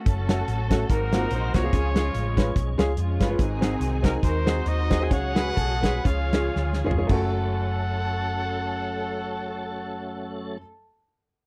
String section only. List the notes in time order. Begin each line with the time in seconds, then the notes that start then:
Already playing: A3
0.06 C#4 F#4 A4
0.91 D#4 F#4 A#4
1.31 C5
1.55 A#4
1.73 C#4 F4 G#4
1.96 G#3 C#4 F4
2.97 G#3 C#4 F4
3.39 C4 D#4 G#4
4.23 D#4 F#4 A#4
4.47 D#4 F#4 C5
4.91 D#5
5.11 F#4 G#4 C#5
5.36 B4
5.56 A4
5.83 B4
6.05 F4 G#4 C#5
7.09 A4